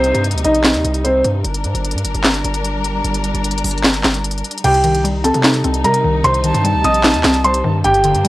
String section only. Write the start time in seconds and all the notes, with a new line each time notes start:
Already playing: C3 G3 D#4
1.44 G3 D4 A#4
4.64 C3 G3 D#4
7.84 A#3 D4